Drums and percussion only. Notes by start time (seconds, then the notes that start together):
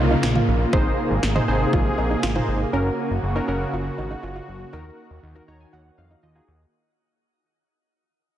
0.23 snare
0.35 mid tom
0.73 kick
1.23 snare
1.36 mid tom
1.73 kick
2.23 snare
2.35 mid tom